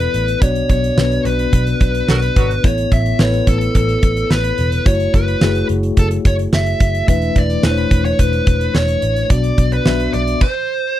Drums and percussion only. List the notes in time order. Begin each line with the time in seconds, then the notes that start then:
0.00 closed hi-hat
0.14 closed hi-hat
0.28 closed hi-hat
0.42 kick, closed hi-hat
0.55 closed hi-hat
0.69 kick, closed hi-hat
0.84 closed hi-hat
0.98 snare
1.12 closed hi-hat
1.25 closed hi-hat
1.39 closed hi-hat
1.53 kick, closed hi-hat
1.67 closed hi-hat
1.81 kick, closed hi-hat
1.95 closed hi-hat
2.08 snare
2.22 closed hi-hat
2.36 kick, closed hi-hat
2.51 closed hi-hat
2.64 kick, closed hi-hat
2.78 closed hi-hat
2.92 kick, closed hi-hat
3.06 closed hi-hat
3.19 snare
3.33 closed hi-hat
3.47 kick, closed hi-hat
3.61 closed hi-hat
3.75 kick, closed hi-hat
3.89 closed hi-hat
4.03 kick, closed hi-hat
4.17 closed hi-hat
4.31 snare
4.44 closed hi-hat
4.58 closed hi-hat
4.72 closed hi-hat
4.86 kick, closed hi-hat
5.00 closed hi-hat
5.14 kick, closed hi-hat
5.28 closed hi-hat
5.41 snare
5.55 closed hi-hat
5.69 closed hi-hat
5.83 closed hi-hat
5.97 kick, closed hi-hat
6.11 closed hi-hat
6.25 kick, closed hi-hat
6.39 closed hi-hat
6.53 snare
6.66 closed hi-hat
6.80 kick, closed hi-hat
6.94 closed hi-hat
7.08 kick, closed hi-hat
7.22 closed hi-hat
7.36 kick, closed hi-hat
7.50 closed hi-hat
7.63 snare
7.77 closed hi-hat
7.91 kick, closed hi-hat
8.05 closed hi-hat
8.19 kick, closed hi-hat
8.33 closed hi-hat
8.47 kick, closed hi-hat
8.61 closed hi-hat
8.75 snare
8.88 closed hi-hat
9.02 closed hi-hat
9.16 closed hi-hat
9.30 kick, closed hi-hat
9.44 closed hi-hat
9.58 kick, closed hi-hat
9.72 closed hi-hat
9.86 snare
10.00 closed hi-hat
10.14 closed hi-hat
10.27 closed hi-hat
10.41 kick, crash